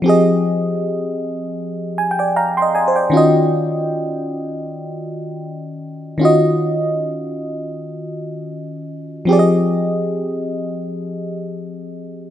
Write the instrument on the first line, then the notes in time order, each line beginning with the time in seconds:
fm electric piano
0.02 F3 C4 G4
0.08 G#4 D#5
1.98 G#5
2.11 G5
2.19 D5 G5
2.36 F5 A#5
2.57 G5 C6
2.62 D#5
2.75 D#5 G#5
2.88 C5
2.96 D5 G5
3.10 D#3 C#4 F4
3.15 F#4 D#5
6.18 D#3 C#4 F4
6.23 F#4 D#5
9.25 F3 C4 G4
9.31 G#4 D5
9.39 D#5